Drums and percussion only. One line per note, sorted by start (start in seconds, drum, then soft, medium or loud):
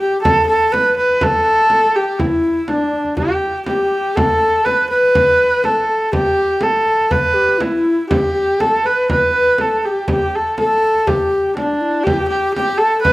0.25 frame drum medium
0.74 frame drum medium
0.97 frame drum soft
1.09 frame drum soft
1.21 frame drum medium
1.58 frame drum soft
1.70 frame drum medium
2.20 frame drum medium
2.68 frame drum medium
2.93 frame drum soft
3.05 frame drum soft
3.17 frame drum medium
3.54 frame drum soft
3.67 frame drum medium
4.17 frame drum medium
4.66 frame drum medium
4.91 frame drum soft
5.03 frame drum soft
5.15 frame drum medium
5.52 frame drum soft
5.64 frame drum medium
6.13 frame drum medium
6.61 frame drum medium
6.86 frame drum soft
6.99 frame drum soft
7.11 frame drum medium
7.49 frame drum soft
7.61 frame drum medium
8.11 frame drum medium
8.60 frame drum medium
8.85 frame drum soft
9.10 frame drum medium
9.47 frame drum soft
9.58 frame drum medium
10.08 frame drum medium
10.58 frame drum medium
10.82 frame drum soft
10.95 frame drum soft
11.07 frame drum medium
11.44 frame drum soft
11.57 frame drum medium
12.07 frame drum medium
12.32 frame drum soft
12.57 frame drum medium
13.05 frame drum medium